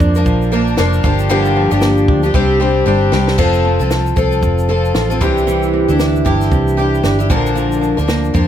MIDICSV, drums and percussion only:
0, 0, Header, 1, 2, 480
1, 0, Start_track
1, 0, Key_signature, -1, "major"
1, 0, Tempo, 521739
1, 1198, Time_signature, 4, 2, 24, 8
1, 7798, End_track
2, 0, Start_track
2, 0, Title_t, "Drums"
2, 3, Note_on_c, 9, 36, 99
2, 3, Note_on_c, 9, 82, 50
2, 95, Note_off_c, 9, 36, 0
2, 95, Note_off_c, 9, 82, 0
2, 137, Note_on_c, 9, 82, 59
2, 229, Note_off_c, 9, 82, 0
2, 238, Note_on_c, 9, 82, 62
2, 239, Note_on_c, 9, 36, 84
2, 330, Note_off_c, 9, 82, 0
2, 331, Note_off_c, 9, 36, 0
2, 386, Note_on_c, 9, 82, 51
2, 478, Note_off_c, 9, 82, 0
2, 480, Note_on_c, 9, 82, 42
2, 572, Note_off_c, 9, 82, 0
2, 620, Note_on_c, 9, 82, 45
2, 710, Note_on_c, 9, 38, 102
2, 712, Note_off_c, 9, 82, 0
2, 718, Note_on_c, 9, 82, 81
2, 802, Note_off_c, 9, 38, 0
2, 810, Note_off_c, 9, 82, 0
2, 857, Note_on_c, 9, 82, 54
2, 949, Note_off_c, 9, 82, 0
2, 950, Note_on_c, 9, 82, 44
2, 956, Note_on_c, 9, 36, 107
2, 1042, Note_off_c, 9, 82, 0
2, 1048, Note_off_c, 9, 36, 0
2, 1094, Note_on_c, 9, 82, 60
2, 1186, Note_off_c, 9, 82, 0
2, 1192, Note_on_c, 9, 82, 72
2, 1284, Note_off_c, 9, 82, 0
2, 1332, Note_on_c, 9, 82, 57
2, 1424, Note_off_c, 9, 82, 0
2, 1575, Note_on_c, 9, 82, 64
2, 1667, Note_off_c, 9, 82, 0
2, 1669, Note_on_c, 9, 38, 113
2, 1672, Note_on_c, 9, 82, 78
2, 1761, Note_off_c, 9, 38, 0
2, 1764, Note_off_c, 9, 82, 0
2, 1815, Note_on_c, 9, 82, 50
2, 1907, Note_off_c, 9, 82, 0
2, 1917, Note_on_c, 9, 36, 102
2, 2009, Note_off_c, 9, 36, 0
2, 2052, Note_on_c, 9, 82, 68
2, 2144, Note_off_c, 9, 82, 0
2, 2154, Note_on_c, 9, 36, 90
2, 2246, Note_off_c, 9, 36, 0
2, 2871, Note_on_c, 9, 38, 99
2, 2963, Note_off_c, 9, 38, 0
2, 3014, Note_on_c, 9, 38, 92
2, 3106, Note_off_c, 9, 38, 0
2, 3114, Note_on_c, 9, 36, 109
2, 3114, Note_on_c, 9, 49, 86
2, 3206, Note_off_c, 9, 36, 0
2, 3206, Note_off_c, 9, 49, 0
2, 3252, Note_on_c, 9, 82, 52
2, 3344, Note_off_c, 9, 82, 0
2, 3498, Note_on_c, 9, 82, 54
2, 3590, Note_off_c, 9, 82, 0
2, 3593, Note_on_c, 9, 38, 112
2, 3595, Note_on_c, 9, 82, 83
2, 3685, Note_off_c, 9, 38, 0
2, 3687, Note_off_c, 9, 82, 0
2, 3738, Note_on_c, 9, 82, 49
2, 3830, Note_off_c, 9, 82, 0
2, 3832, Note_on_c, 9, 82, 49
2, 3835, Note_on_c, 9, 36, 101
2, 3924, Note_off_c, 9, 82, 0
2, 3927, Note_off_c, 9, 36, 0
2, 3971, Note_on_c, 9, 82, 57
2, 4063, Note_off_c, 9, 82, 0
2, 4072, Note_on_c, 9, 82, 58
2, 4073, Note_on_c, 9, 36, 91
2, 4164, Note_off_c, 9, 82, 0
2, 4165, Note_off_c, 9, 36, 0
2, 4218, Note_on_c, 9, 82, 54
2, 4310, Note_off_c, 9, 82, 0
2, 4460, Note_on_c, 9, 82, 42
2, 4550, Note_on_c, 9, 38, 106
2, 4552, Note_off_c, 9, 82, 0
2, 4557, Note_on_c, 9, 82, 78
2, 4642, Note_off_c, 9, 38, 0
2, 4649, Note_off_c, 9, 82, 0
2, 4701, Note_on_c, 9, 82, 56
2, 4793, Note_off_c, 9, 82, 0
2, 4796, Note_on_c, 9, 36, 98
2, 4796, Note_on_c, 9, 82, 48
2, 4888, Note_off_c, 9, 36, 0
2, 4888, Note_off_c, 9, 82, 0
2, 4945, Note_on_c, 9, 82, 57
2, 5037, Note_off_c, 9, 82, 0
2, 5041, Note_on_c, 9, 82, 77
2, 5133, Note_off_c, 9, 82, 0
2, 5177, Note_on_c, 9, 82, 54
2, 5269, Note_off_c, 9, 82, 0
2, 5418, Note_on_c, 9, 82, 56
2, 5510, Note_off_c, 9, 82, 0
2, 5515, Note_on_c, 9, 38, 118
2, 5518, Note_on_c, 9, 82, 80
2, 5607, Note_off_c, 9, 38, 0
2, 5610, Note_off_c, 9, 82, 0
2, 5663, Note_on_c, 9, 82, 50
2, 5755, Note_off_c, 9, 82, 0
2, 5758, Note_on_c, 9, 36, 95
2, 5758, Note_on_c, 9, 82, 46
2, 5850, Note_off_c, 9, 36, 0
2, 5850, Note_off_c, 9, 82, 0
2, 5899, Note_on_c, 9, 82, 58
2, 5903, Note_on_c, 9, 38, 35
2, 5991, Note_off_c, 9, 82, 0
2, 5995, Note_off_c, 9, 38, 0
2, 5995, Note_on_c, 9, 36, 92
2, 5997, Note_on_c, 9, 82, 55
2, 6087, Note_off_c, 9, 36, 0
2, 6089, Note_off_c, 9, 82, 0
2, 6144, Note_on_c, 9, 82, 51
2, 6236, Note_off_c, 9, 82, 0
2, 6243, Note_on_c, 9, 82, 35
2, 6335, Note_off_c, 9, 82, 0
2, 6389, Note_on_c, 9, 82, 45
2, 6473, Note_on_c, 9, 38, 101
2, 6480, Note_off_c, 9, 82, 0
2, 6480, Note_on_c, 9, 82, 66
2, 6565, Note_off_c, 9, 38, 0
2, 6572, Note_off_c, 9, 82, 0
2, 6623, Note_on_c, 9, 82, 51
2, 6715, Note_off_c, 9, 82, 0
2, 6715, Note_on_c, 9, 82, 44
2, 6716, Note_on_c, 9, 36, 100
2, 6807, Note_off_c, 9, 82, 0
2, 6808, Note_off_c, 9, 36, 0
2, 6866, Note_on_c, 9, 82, 57
2, 6958, Note_off_c, 9, 82, 0
2, 6963, Note_on_c, 9, 82, 70
2, 7055, Note_off_c, 9, 82, 0
2, 7101, Note_on_c, 9, 82, 55
2, 7193, Note_off_c, 9, 82, 0
2, 7203, Note_on_c, 9, 82, 51
2, 7295, Note_off_c, 9, 82, 0
2, 7346, Note_on_c, 9, 82, 52
2, 7437, Note_on_c, 9, 38, 123
2, 7438, Note_off_c, 9, 82, 0
2, 7440, Note_on_c, 9, 82, 81
2, 7529, Note_off_c, 9, 38, 0
2, 7532, Note_off_c, 9, 82, 0
2, 7584, Note_on_c, 9, 82, 49
2, 7676, Note_off_c, 9, 82, 0
2, 7678, Note_on_c, 9, 82, 48
2, 7679, Note_on_c, 9, 36, 100
2, 7770, Note_off_c, 9, 82, 0
2, 7771, Note_off_c, 9, 36, 0
2, 7798, End_track
0, 0, End_of_file